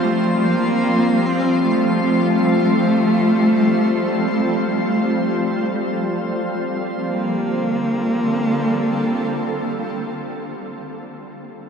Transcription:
0.00 7.08 F3 medium
0.00 7.08 G3 medium
0.00 0.47 A3 medium
0.00 7.08 C4 medium
0.00 7.08 F4 medium
0.00 7.10 C5 medium
0.00 0.43 A#5 medium
0.00 7.11 C6 medium
0.46 1.27 A#3 loud
0.74 7.08 A4 medium
1.26 1.65 C4 medium
1.66 6.19 A3 medium
7.07 10.10 D3 medium
7.07 10.10 A#3 medium
7.19 10.22 G3 medium
7.31 10.34 C4 medium
7.44 10.46 F4 medium
7.58 10.61 A4 medium

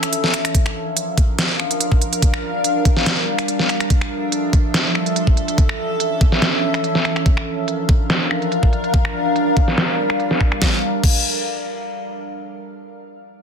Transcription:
0.00 0.53 E3 medium
0.00 0.53 C#4 medium
0.00 0.51 A4 medium
0.00 0.51 E5 medium
0.00 finger snap medium
0.00 closed hi-hat soft
0.13 closed hi-hat medium
0.24 snare soft
0.34 finger snap medium
0.34 closed hi-hat medium
0.45 finger snap medium
0.45 closed hi-hat medium
0.55 2.21 F3 medium
0.55 5.54 D4 medium
0.55 3.87 A#4 medium
0.55 3.87 F5 medium
0.55 kick loud
0.55 closed hi-hat medium
0.66 finger snap medium
0.97 closed hi-hat medium
1.18 kick loud
1.18 closed hi-hat medium
1.39 snare loud
1.39 closed hi-hat medium
1.60 finger snap soft
1.71 closed hi-hat medium
1.81 closed hi-hat medium
1.92 kick medium
2.01 closed hi-hat medium
2.13 closed hi-hat medium
2.22 3.89 G3 medium
2.22 kick loud
2.22 closed hi-hat medium
2.34 finger snap medium
2.64 closed hi-hat medium
2.85 kick loud
2.85 closed hi-hat soft
2.97 snare soft
3.06 snare loud
3.06 closed hi-hat medium
3.38 finger snap medium
3.38 closed hi-hat soft
3.48 closed hi-hat medium
3.59 snare soft
3.69 finger snap medium
3.69 closed hi-hat soft
3.80 finger snap medium
3.80 closed hi-hat soft
3.90 5.56 F3 medium
3.90 7.23 A4 medium
3.90 5.56 E5 medium
3.90 kick loud
3.90 closed hi-hat medium
4.01 finger snap medium
4.32 closed hi-hat medium
4.53 kick loud
4.53 closed hi-hat soft
4.74 snare loud
4.74 closed hi-hat medium
4.95 finger snap soft
5.06 closed hi-hat soft
5.16 closed hi-hat medium
5.27 kick medium
5.37 closed hi-hat soft
5.48 closed hi-hat soft
5.58 7.24 E3 medium
5.58 7.24 C#4 medium
5.58 7.24 E5 loud
5.58 kick loud
5.58 closed hi-hat medium
5.69 finger snap medium
6.00 closed hi-hat medium
6.21 kick loud
6.21 closed hi-hat soft
6.32 snare soft
6.42 snare loud
6.42 closed hi-hat medium
6.74 finger snap medium
6.74 closed hi-hat soft
6.84 closed hi-hat medium
6.95 snare soft
7.05 finger snap medium
7.05 closed hi-hat medium
7.16 finger snap medium
7.16 closed hi-hat medium
7.26 8.92 F3 medium
7.26 10.58 D4 medium
7.26 10.58 A#4 medium
7.26 10.58 F5 medium
7.26 kick loud
7.26 closed hi-hat medium
7.37 finger snap medium
7.68 closed hi-hat medium
7.89 kick loud
7.89 closed hi-hat soft
8.10 snare loud
8.10 closed hi-hat medium
8.31 finger snap medium
8.42 closed hi-hat soft
8.52 closed hi-hat medium
8.63 kick medium
8.73 closed hi-hat soft
8.84 closed hi-hat soft
8.94 10.60 G3 medium
8.94 kick loud
8.94 closed hi-hat medium
9.05 finger snap medium
9.36 closed hi-hat medium
9.57 kick loud
9.57 closed hi-hat medium
9.68 snare soft
9.78 snare loud
9.78 closed hi-hat medium
10.10 finger snap medium
10.10 closed hi-hat medium
10.20 closed hi-hat medium
10.31 snare soft
10.41 finger snap medium
10.41 kick medium
10.41 closed hi-hat medium
10.52 finger snap medium
10.52 closed hi-hat medium
10.62 kick loud
10.62 snare medium
11.04 kick loud
11.04 crash medium

